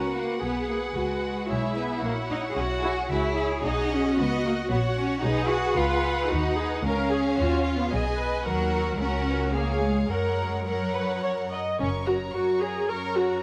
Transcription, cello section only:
0.00 0.14 C#4 medium
0.14 0.41 A#3 medium
0.42 0.68 B3 medium
0.69 0.77 A#3 medium
0.96 1.75 G#3 medium
1.77 2.03 B3 medium
2.03 2.11 A#3 medium
2.30 2.38 D#4 medium
2.50 2.57 G#4 medium
2.56 3.10 F#4 medium
3.10 3.63 E4 medium
3.63 3.90 D#4 medium
3.91 4.18 C#4 medium
4.17 4.44 B3 medium
4.44 4.52 A#3 medium
4.70 4.78 B3 medium
4.97 5.23 C#4 medium
5.23 5.50 D#4 medium
5.50 5.77 F#4 medium
5.77 6.31 F4 medium
6.31 6.84 D#4 medium
6.84 7.77 C#4 medium
7.79 8.06 B3 medium
8.46 8.97 F#3 medium
9.00 9.55 C#4 medium
9.55 9.83 A#3 medium
9.83 10.09 G#3 medium
10.11 10.66 G#3 medium
10.67 11.51 F#3 soft
11.79 12.28 F#2 medium
12.34 12.82 F#2 soft
12.89 13.36 F#2 soft

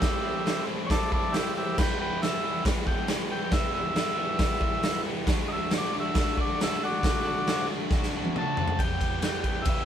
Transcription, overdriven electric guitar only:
0.00 0.45 A2 medium
0.00 0.43 E3 medium
0.00 0.25 A3 loud
0.00 0.22 C4 loud
0.04 0.20 E4 medium
0.21 0.45 C4 medium
0.21 0.47 E4 medium
0.26 0.43 A3 medium
0.43 0.69 E3 medium
0.43 0.67 A3 medium
0.43 0.66 C4 medium
0.48 0.65 E4 medium
0.66 0.90 E3 medium
0.66 0.91 A3 medium
0.66 0.92 C4 medium
0.66 0.94 E4 medium
0.71 1.13 A2 medium
0.90 1.16 E3 medium
0.90 1.14 A3 medium
0.90 1.12 C4 medium
0.94 1.12 E4 medium
1.12 1.33 E3 medium
1.12 1.34 A3 medium
1.12 1.35 C4 medium
1.12 1.38 E4 medium
1.17 1.58 A2 medium
1.33 1.78 E3 medium
1.33 1.58 A3 medium
1.33 1.56 C4 medium
1.38 1.55 E4 medium
1.55 1.77 C4 medium
1.55 1.81 E4 medium
1.60 1.78 A3 medium
1.77 2.49 E2 medium
1.77 2.22 B2 medium
1.77 2.04 E3 loud
1.77 2.02 G3 loud
1.77 2.01 B3 medium
1.82 1.99 E4 medium
1.99 2.24 G3 medium
1.99 2.26 B3 medium
1.99 2.27 E4 medium
2.04 2.22 E3 medium
2.23 2.46 E3 medium
2.23 2.45 G3 medium
2.23 2.45 B3 medium
2.27 2.43 E4 medium
2.44 2.63 E3 medium
2.44 2.65 G3 medium
2.44 2.67 B3 medium
2.44 2.68 E4 loud
2.48 2.90 E2 medium
2.48 2.89 B2 medium
2.64 2.89 E3 medium
2.64 2.87 G3 medium
2.64 2.86 B3 medium
2.69 2.85 E4 medium
2.86 3.05 E3 medium
2.86 3.07 G3 medium
2.86 3.08 B3 loud
2.86 3.09 E4 medium
2.90 3.33 E2 medium
2.90 3.33 B2 medium
3.07 3.32 E3 medium
3.07 3.31 G3 medium
3.07 3.29 B3 medium
3.07 3.27 E4 loud
3.28 3.53 B3 medium
3.28 3.54 E4 medium
3.32 3.51 E3 medium
3.32 3.52 G3 medium
3.50 3.96 E2 medium
3.50 3.96 B2 medium
3.50 3.76 E3 loud
3.50 3.74 G3 loud
3.55 3.73 B3 medium
3.55 3.71 E4 loud
3.72 3.95 G3 medium
3.72 3.97 B3 medium
3.72 3.98 E4 medium
3.77 3.93 E3 medium
3.94 4.19 E3 medium
3.94 4.17 G3 medium
3.94 4.16 B3 medium
3.99 4.16 E4 medium
4.17 4.63 E2 medium
4.17 4.63 B2 medium
4.17 4.36 E3 medium
4.17 4.38 G3 loud
4.17 4.39 B3 medium
4.17 4.41 E4 medium
4.38 4.62 E3 medium
4.38 4.61 G3 medium
4.38 4.60 B3 medium
4.42 4.59 E4 medium
4.60 5.07 E2 medium
4.60 5.07 B2 medium
4.60 4.82 E3 medium
4.60 4.84 G3 medium
4.60 4.86 B3 medium
4.60 4.87 E4 medium
4.83 5.10 E3 medium
4.83 5.09 G3 medium
4.83 5.07 B3 medium
4.88 5.05 E4 medium
5.06 5.27 G3 medium
5.06 5.28 B3 medium
5.06 5.27 E4 medium
5.11 5.26 E3 medium
5.26 5.71 D3 loud
5.26 5.54 A3 medium
5.26 5.52 D4 loud
5.30 5.49 F#4 loud
5.50 5.75 D4 medium
5.50 5.76 F#4 medium
5.55 5.72 A3 medium
5.71 5.97 D3 medium
5.71 5.96 A3 medium
5.71 5.94 D4 medium
5.76 5.92 F#4 medium
5.92 6.17 A3 medium
5.92 6.19 D4 medium
5.92 6.20 F#4 medium
5.98 6.16 D3 medium
6.17 6.41 D3 medium
6.17 6.39 A3 medium
6.17 6.38 D4 medium
6.21 6.36 F#4 medium
6.38 6.60 A3 medium
6.38 6.61 D4 medium
6.38 6.63 F#4 medium
6.43 6.59 D3 medium
6.60 7.02 D3 medium
6.60 6.83 A3 medium
6.60 6.82 D4 medium
6.60 6.78 F#4 loud
6.80 7.05 D4 medium
6.80 7.07 F#4 medium
6.84 7.04 A3 medium
7.03 7.46 D3 medium
7.03 7.28 A3 loud
7.03 7.26 D4 medium
7.08 7.24 F#4 loud
7.25 7.50 D4 medium
7.25 7.51 F#4 medium
7.30 7.48 A3 medium
7.47 7.73 D3 medium
7.47 7.72 A3 medium
7.47 7.71 D4 medium
7.52 7.69 F#4 medium
7.71 7.92 D3 medium
7.71 7.94 A3 medium
7.71 7.96 D4 medium
7.71 7.97 F#4 loud
7.93 8.18 D3 medium
7.93 8.17 A3 medium
7.97 8.15 D4 medium
7.97 8.14 F#4 medium
8.15 8.36 A3 medium
8.15 8.38 D4 medium
8.15 8.40 F#4 medium
8.19 8.35 D3 medium
8.36 8.78 D3 medium
8.36 8.61 A3 medium
8.36 8.59 D4 medium
8.41 8.57 F#4 medium
8.58 8.79 D4 medium
8.58 8.78 F#4 medium
8.62 8.80 A3 medium
8.80 9.22 E2 medium
8.80 9.22 B2 medium
8.80 9.05 E3 medium
8.80 9.04 G3 medium
8.80 9.02 B3 medium
8.85 9.01 G4 loud
9.01 9.24 G3 medium
9.01 9.25 B3 medium
9.01 9.26 G4 medium
9.06 9.24 E3 medium
9.22 9.65 E2 loud
9.22 9.66 B2 medium
9.22 9.50 E3 medium
9.22 9.48 G3 loud
9.22 9.47 B3 loud
9.26 9.45 G4 loud
9.45 9.67 G3 medium
9.45 9.68 B3 medium
9.45 9.69 G4 medium
9.50 9.67 E3 medium
9.65 9.85 E2 loud
9.65 9.85 B2 loud
9.65 9.85 E3 medium
9.65 9.85 G3 loud
9.69 9.85 B3 medium
9.69 9.85 G4 loud

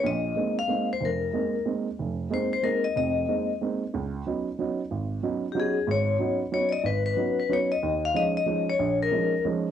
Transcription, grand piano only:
0.04 0.31 A#1 medium
0.04 0.31 A#2 medium
0.36 0.57 G#3 soft
0.36 0.57 A#3 soft
0.36 0.57 C4 soft
0.36 0.57 D#4 medium
0.68 0.89 G#3 soft
0.68 0.89 A#3 soft
0.68 0.90 C4 soft
0.68 0.90 D#4 medium
1.01 1.28 F1 medium
1.33 1.54 G#3 soft
1.33 1.55 A#3 soft
1.33 1.55 C4 soft
1.33 1.55 D#4 soft
1.65 1.87 G#3 soft
1.65 1.87 A#3 soft
1.65 1.87 C4 soft
1.65 1.87 D#4 soft
1.99 2.26 F1 medium
2.30 2.52 G#3 soft
2.30 2.52 A#3 soft
2.30 2.52 C4 soft
2.30 2.52 D#4 medium
2.63 2.84 G#3 soft
2.63 2.84 A#3 soft
2.63 2.84 C4 soft
2.63 2.85 D#4 medium
2.96 3.23 F1 medium
2.96 3.23 F2 medium
3.28 3.49 G#3 soft
3.28 3.49 A#3 soft
3.28 3.50 C4 soft
3.28 3.50 D#4 medium
3.61 3.82 G#3 soft
3.61 3.82 A#3 soft
3.61 3.82 C4 soft
3.61 3.82 D#4 medium
3.94 4.21 C#2 medium
4.26 4.47 F#3 soft
4.26 4.47 B3 soft
4.26 4.47 C#4 soft
4.26 4.47 D#4 medium
4.59 4.79 F#3 soft
4.59 4.79 B3 soft
4.59 4.80 C#4 soft
4.59 4.80 D#4 medium
4.91 5.18 G#1 medium
5.23 5.44 F#3 soft
5.23 5.44 B3 soft
5.23 5.44 C#4 soft
5.23 5.44 D#4 medium
5.55 5.76 F#3 medium
5.55 5.76 B3 soft
5.55 5.77 C#4 soft
5.55 5.77 D#4 medium
5.87 6.15 G#1 medium
5.87 6.15 G#2 medium
6.19 6.41 F#3 soft
6.19 6.41 B3 soft
6.19 6.41 C#4 soft
6.19 6.41 D#4 medium
6.52 6.73 F#3 soft
6.52 6.74 B3 soft
6.52 6.74 C#4 soft
6.52 6.74 D#4 medium
6.84 7.12 G#1 medium
7.17 7.38 F#3 soft
7.17 7.39 B3 soft
7.17 7.39 C#4 soft
7.17 7.39 D#4 medium
7.49 7.71 F#3 soft
7.49 7.71 B3 soft
7.49 7.71 C#4 soft
7.49 7.71 D#4 medium
7.83 8.10 D#2 medium
8.14 8.36 F3 medium
8.14 8.36 G#3 soft
8.14 8.36 C#4 soft
8.14 8.36 D#4 medium
8.46 8.68 F3 soft
8.46 8.68 G#3 soft
8.46 8.68 C#4 soft
8.46 8.68 D#4 medium
8.79 9.07 A#1 medium
9.11 9.33 F3 medium
9.11 9.33 G#3 soft
9.11 9.33 C#4 soft
9.11 9.33 D#4 medium
9.45 9.66 F3 medium
9.45 9.66 G#3 soft
9.45 9.66 C#4 soft
9.45 9.66 D#4 medium

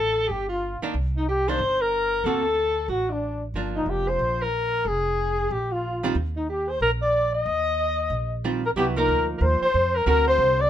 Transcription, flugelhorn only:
0.00 0.33 A4 medium
0.31 0.50 G4 medium
0.51 0.81 F4 medium
1.19 1.28 D#4 medium
1.30 1.50 G4 medium
1.49 1.83 C5 loud
1.81 2.28 A#4 medium
2.26 2.91 A4 medium
2.91 3.14 F#4 medium
3.12 3.44 D4 medium
3.77 3.92 D#4 medium
3.90 4.11 G4 medium
4.10 4.45 C5 medium
4.44 4.89 A#4 medium
4.88 5.54 G#4 medium
5.52 5.74 G4 medium
5.73 6.04 F4 medium
6.37 6.48 D#4 medium
6.51 6.73 G4 medium
6.71 6.81 C5 medium
6.82 6.91 A#4 medium
7.03 7.32 D5 medium
7.35 8.40 D#5 loud
8.66 8.71 A#4 medium
8.78 8.87 G4 medium
8.98 9.28 A#4 medium
9.41 9.46 A#4 medium
9.41 9.63 C5 medium
9.65 9.99 C5 medium
9.97 10.08 A#4 medium
10.09 10.26 A#4 loud
10.29 10.63 C5 loud
10.61 10.70 D5 loud

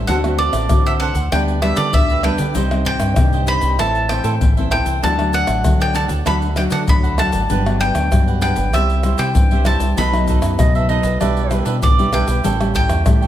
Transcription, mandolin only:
0.07 0.16 F#5 medium
0.39 0.82 D5 medium
0.86 0.91 E5 medium
1.00 1.32 F#5 medium
1.32 1.40 G5 loud
1.62 1.77 E5 medium
1.77 1.94 D5 medium
1.94 2.23 E5 medium
2.24 2.85 G5 loud
2.86 3.44 G5 loud
3.48 3.77 B5 loud
3.79 4.08 A5 medium
4.09 4.68 G5 medium
4.72 5.01 G5 medium
5.04 5.32 A5 loud
5.34 5.81 F#5 medium
5.82 5.95 G5 loud
5.95 6.04 A5 loud
6.27 6.35 B5 loud
6.57 6.62 G5 medium
6.72 6.77 F#5 medium
6.89 7.19 B5 medium
7.19 7.80 A5 medium
7.81 8.39 G5 loud
8.42 8.74 G5 medium
8.74 9.22 E5 medium
9.19 9.66 G5 medium
9.66 9.95 A5 medium
9.98 11.89 B5 medium
11.83 12.12 D5 medium
12.14 12.71 G5 medium
12.76 13.27 G5 loud

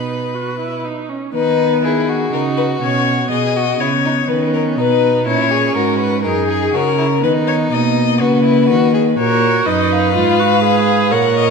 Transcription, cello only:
0.00 0.84 B2 medium
1.35 2.29 D#3 medium
2.33 2.81 C#3 medium
2.82 3.30 B2 medium
3.31 3.79 B2 medium
3.80 4.28 C#3 medium
4.28 4.79 D#3 medium
4.78 5.28 B2 medium
5.26 5.75 A#2 medium
5.75 6.26 G#2 medium
6.24 6.73 F#2 medium
6.74 7.25 C#3 medium
7.23 7.71 D#3 medium
7.72 8.22 B2 medium
8.21 8.71 C#3 medium
8.70 9.18 D#3 medium
9.18 9.66 A#2 medium
9.67 10.16 F#2 medium
10.15 11.14 G#2 medium
11.12 11.50 A#2 medium

